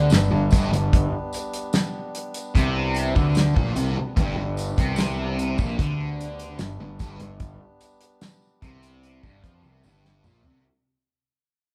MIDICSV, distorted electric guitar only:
0, 0, Header, 1, 3, 480
1, 0, Start_track
1, 0, Key_signature, 1, "major"
1, 0, Tempo, 809389
1, 550, Time_signature, 4, 2, 24, 8
1, 6963, End_track
2, 0, Start_track
2, 0, Title_t, "Distorted electric guitar"
2, 0, Program_c, 0, 30
2, 0, Note_on_c, 0, 50, 96
2, 60, Note_off_c, 0, 50, 0
2, 68, Note_on_c, 0, 43, 68
2, 181, Note_off_c, 0, 43, 0
2, 188, Note_on_c, 0, 43, 72
2, 303, Note_off_c, 0, 43, 0
2, 310, Note_on_c, 0, 43, 102
2, 423, Note_off_c, 0, 43, 0
2, 431, Note_on_c, 0, 43, 71
2, 622, Note_off_c, 0, 43, 0
2, 1510, Note_on_c, 0, 48, 96
2, 1863, Note_off_c, 0, 48, 0
2, 1868, Note_on_c, 0, 50, 102
2, 2102, Note_off_c, 0, 50, 0
2, 2107, Note_on_c, 0, 46, 96
2, 2222, Note_off_c, 0, 46, 0
2, 2230, Note_on_c, 0, 48, 100
2, 2343, Note_off_c, 0, 48, 0
2, 2469, Note_on_c, 0, 43, 110
2, 2582, Note_off_c, 0, 43, 0
2, 2593, Note_on_c, 0, 43, 68
2, 2784, Note_off_c, 0, 43, 0
2, 2834, Note_on_c, 0, 48, 97
2, 3305, Note_off_c, 0, 48, 0
2, 3314, Note_on_c, 0, 46, 102
2, 3425, Note_off_c, 0, 46, 0
2, 3431, Note_on_c, 0, 50, 103
2, 3904, Note_off_c, 0, 50, 0
2, 3905, Note_on_c, 0, 43, 76
2, 4025, Note_off_c, 0, 43, 0
2, 4032, Note_on_c, 0, 43, 69
2, 4141, Note_off_c, 0, 43, 0
2, 4148, Note_on_c, 0, 43, 99
2, 4262, Note_off_c, 0, 43, 0
2, 4279, Note_on_c, 0, 43, 74
2, 4467, Note_off_c, 0, 43, 0
2, 5113, Note_on_c, 0, 48, 104
2, 5465, Note_off_c, 0, 48, 0
2, 5472, Note_on_c, 0, 43, 99
2, 5584, Note_off_c, 0, 43, 0
2, 5589, Note_on_c, 0, 53, 96
2, 5703, Note_off_c, 0, 53, 0
2, 5712, Note_on_c, 0, 48, 101
2, 5825, Note_off_c, 0, 48, 0
2, 5831, Note_on_c, 0, 43, 90
2, 6064, Note_off_c, 0, 43, 0
2, 6076, Note_on_c, 0, 46, 97
2, 6187, Note_off_c, 0, 46, 0
2, 6194, Note_on_c, 0, 48, 93
2, 6306, Note_off_c, 0, 48, 0
2, 6963, End_track
3, 0, Start_track
3, 0, Title_t, "Muted distorted electric guitar strokes"
3, 2356, Note_on_c, 9, 29, 58
3, 2415, Note_off_c, 9, 29, 0
3, 6963, End_track
0, 0, End_of_file